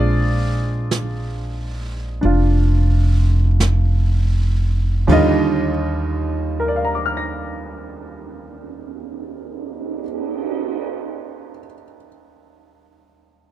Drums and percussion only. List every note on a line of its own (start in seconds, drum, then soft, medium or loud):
0.91 brush sweep soft
0.91 snare soft
0.91 hi-hat pedal soft
2.23 brush sweep soft
3.60 brush sweep soft
3.60 snare soft
3.60 hi-hat pedal soft
5.08 kick soft
5.08 ride soft
6.12 cymbal swell soft